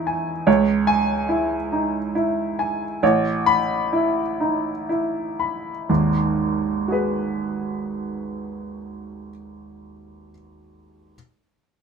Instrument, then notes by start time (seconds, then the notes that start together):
upright piano
Already playing: E2 D#4 E4 D#5 G#5
0.07 G#5
0.47 C#2 C#5
0.87 G#5
1.29 E4
1.72 D#4
2.15 E4
2.59 G#5
3.03 A1 C#5
3.46 B5
3.93 E4
4.40 D#4
4.89 E4
5.40 B5
5.89 G#1 D#2
6.88 F#4 G#4
6.92 B4